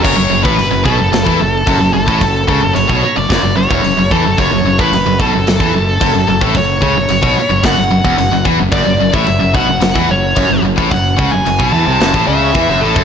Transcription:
<<
  \new Staff \with { instrumentName = "Lead electric guitar" } { \time 4/4 \key fis \minor \tempo 4 = 110 cis''8. b'8. a'2 a'8~ | a'4 cis''8 cis''16 d''8. cis''4 a'8 | cis''8. b'8. a'2 a'8 | cis''2 fis''4. r8 |
d''8. e''8. fis''4 cis''4 r8 | fis''8. gis''8. a''4 e''4 a'8 | }
  \new Staff \with { instrumentName = "Distorted electric guitar" } { \clef bass \time 4/4 \key fis \minor fis,16 fis,16 fis,16 a,16 fis,16 fis,16 b,16 fis,16 fis,16 e16 fis,8 fis,16 fis,16 fis,16 a,16 | fis,8 cis16 fis,16 fis,16 b,16 r16 fis,16 fis,16 fis,16 fis,16 e,16 fis,16 fis,16 e16 fis,16 | fis,16 fis,16 fis,16 a,16 fis,16 fis,16 b,16 fis,16 fis,16 e16 fis,8 fis,16 fis,16 fis,16 a,16 | fis,8 cis16 fis,16 fis,16 b,16 r16 fis,16 fis,16 fis,16 fis,16 e,16 fis,16 fis,16 e16 fis,16 |
fis,16 fis,16 fis,16 a,16 fis,16 fis,16 b,16 fis,16 fis,16 e16 fis,8 fis,16 fis,16 fis,16 a,16 | fis,8 cis16 fis,16 fis,16 b,16 e16 bis,16 fis,16 a,16 cis8 e16 fis,16 a,16 fis,16 | }
  \new Staff \with { instrumentName = "Distorted electric guitar" } { \clef bass \time 4/4 \key fis \minor fis,16 fis,16 fis,16 a,16 fis,16 fis,16 b,16 fis,16 fis,16 e16 fis,8 fis,16 fis,16 fis,16 a,16 | fis,8 cis16 fis,16 fis,16 b,16 r16 fis,16 fis,16 fis,16 fis,16 e,16 fis,16 fis,16 e16 fis,16 | fis,16 fis,16 fis,16 a,16 fis,16 fis,16 b,16 fis,16 fis,16 e16 fis,8 fis,16 fis,16 fis,16 a,16 | fis,8 cis16 fis,16 fis,16 b,16 r16 fis,16 fis,16 fis,16 fis,16 e,16 fis,16 fis,16 e16 fis,16 |
fis,16 fis,16 fis,16 a,16 fis,16 fis,16 b,16 fis,16 fis,16 e16 fis,8 fis,16 fis,16 fis,16 a,16 | fis,8 cis16 fis,16 fis,16 b,16 e16 bis,16 fis,16 a,16 cis8 e16 fis,16 a,16 fis,16 | }
  \new Staff \with { instrumentName = "Fingered electric bass" } { \clef bass \time 4/4 \key fis \minor fis,,16 fis,,16 fis,,16 a,,16 fis,,16 fis,,16 b,,16 fis,,16 fis,,16 e,16 fis,,8 fis,,16 fis,,16 fis,,16 a,,16 | fis,,8 cis,16 fis,,16 fis,,16 b,,16 r16 fis,,16 fis,,16 fis,,16 fis,,16 e,,16 fis,,16 fis,,16 e,16 fis,,16 | fis,,16 fis,,16 fis,,16 a,,16 fis,,16 fis,,16 b,,16 fis,,16 fis,,16 e,16 fis,,8 fis,,16 fis,,16 fis,,16 a,,16 | fis,,8 cis,16 fis,,16 fis,,16 b,,16 r16 fis,,16 fis,,16 fis,,16 fis,,16 e,,16 fis,,16 fis,,16 e,16 fis,,16 |
fis,,16 fis,,16 fis,,16 a,,16 fis,,16 fis,,16 b,,16 fis,,16 fis,,16 e,16 fis,,8 fis,,16 fis,,16 fis,,16 a,,16 | fis,,8 cis,16 fis,,16 fis,,16 b,,16 e,16 bis,,16 fis,,16 a,,16 cis,8 e,16 fis,,16 a,,16 fis,,16 | }
  \new DrumStaff \with { instrumentName = "Drums" } \drummode { \time 4/4 <cymc bd>8. bd16 hho8 bd8 <hho sn>16 bd8. <hho bd>8. bd16 | <hho bd>8 bd8 hho16 bd8. <hho bd sn>8. bd16 hho8 bd8 | <hho bd>8. bd16 hho8 bd8 <hho sn>16 bd8. <hho bd>8. bd16 | <hho bd>8 bd8 hho16 bd8. <hho bd sn>8. bd16 hho8 bd8 |
<hho bd>8. bd16 hho8 bd8 <hho sn>16 bd8. <hho bd>8. bd16 | <hho bd>8 bd8 hho16 bd8. <hho sn>16 bd8. <hho bd>8. bd16 | }
>>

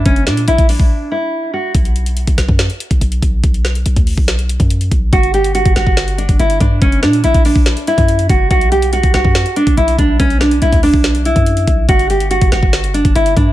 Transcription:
<<
  \new Staff \with { instrumentName = "Nylon-string guitar" } { \time 4/4 \key b \minor \tempo 4 = 142 cis'8 d'8 e'8 d'4 e'4 fis'8 | r1 | r1 | fis'8 g'8 fis'8 fis'4 d'8 e'8 d'8 |
cis'8 d'8 e'8 d'4 e'4 fis'8 | fis'8 g'8 fis'8 fis'4 d'8 e'8 d'8 | cis'8 d'8 e'8 d'4 e'4. | fis'8 g'8 fis'8 fis'4 d'8 e'8 d'8 | }
  \new Staff \with { instrumentName = "808-style bass" } { \clef bass \time 4/4 \key b \minor fis,,8 ais,8 ais,,16 ais,,8 ais,,16 r2 | b,,4~ b,,16 b,,16 b,,16 fis,8 r8 b,,16 b,,8 b,,8 | b,,4 b,,16 d,8 b,,4 fis,8. b,,8 | g,,4~ g,,16 g,,16 g,,16 g,,4 g,,16 g,,8 g,8 |
fis,,8 ais,8 ais,,16 ais,,8 ais,,8 r8 fis,8. fis,,8 | b,,4~ b,,16 b,,16 b,,16 fis,8 r8 b,,16 b,,8 b,,8 | b,,4 b,,16 d,8 b,,4 fis,8. b,,8 | g,,4~ g,,16 g,,16 g,,16 g,,4 g,,16 g,,8 g,8 | }
  \new DrumStaff \with { instrumentName = "Drums" } \drummode { \time 4/4 <hh bd>16 hh16 <hh sn>16 hh16 hh16 <hh bd>16 hho16 bd16 r4 r4 | <hh bd>16 hh16 hh16 hh16 hh16 <hh bd>16 <hh sn>16 bd16 <hh sn>16 hh16 hh16 <hh bd>16 hh16 hh16 <hh bd>8 | <hh bd>16 hh16 <hh sn>16 hh16 hh16 <hh bd>16 hho16 bd16 <hh sn>16 hh16 hh16 <hh bd>16 hh16 hh16 <hh bd>8 | <hh bd>16 hh16 hh16 hh16 hh16 <hh bd>16 <hh sn>16 bd16 <hh sn>16 hh16 hh16 <hh bd>16 hh16 hh16 <hh bd>8 |
<hh bd>16 hh16 <hh sn>16 hh16 hh16 <hh bd>16 hho16 bd16 <hh sn>16 hh16 hh16 <hh bd>16 hh16 hh16 <hh bd>8 | <hh bd>16 hh16 hh16 hh16 hh16 <hh bd>16 <hh sn>16 bd16 <hh sn>16 hh16 hh16 <hh bd>16 hh16 hh16 <hh bd>8 | <hh bd>16 hh16 <hh sn>16 hh16 hh16 <hh bd>16 hho16 bd16 <hh sn>16 hh16 hh16 <hh bd>16 hh16 hh16 <hh bd>8 | <hh bd>16 hh16 hh16 hh16 hh16 <hh bd>16 <hh sn>16 bd16 <hh sn>16 hh16 hh16 <hh bd>16 hh16 hh16 <hh bd>8 | }
>>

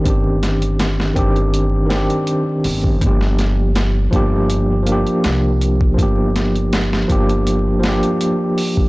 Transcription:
<<
  \new Staff \with { instrumentName = "Tine electric piano" } { \time 4/4 \key g \minor \tempo 4 = 81 <ees c' d' g'>4. <ees c' d' g'>4 <ees c' d' g'>4. | <f bes d' g'>4. <f bes d' g'>4 <f bes d' g'>4. | <f bes d' g'>4. <f bes d' g'>4 <f bes d' g'>4. | }
  \new Staff \with { instrumentName = "Upright bass" } { \clef bass \time 4/4 \key g \minor g,,4. g,,4 r4 g,,8 | g,,4. g,,4 r8 c,4 | g,,4. g,,4 r4. | }
  \new DrumStaff \with { instrumentName = "Drums" } \drummode { \time 4/4 <hh bd>8 <hh sn>16 hh16 <hh sn>16 sn16 <hh bd>16 hh16 hh8 <hh sn>16 hh16 hh8 hho16 bd16 | <hh bd>16 sn16 <hh sn>8 <hh sn>8 <hh bd>8 hh8 hh16 hh16 <hh sn>8 hh16 bd16 | <hh bd>8 <hh sn>16 hh16 <hh sn>16 sn16 <hh bd>16 hh16 hh8 <hh sn>16 hh16 hh8 hho16 bd16 | }
>>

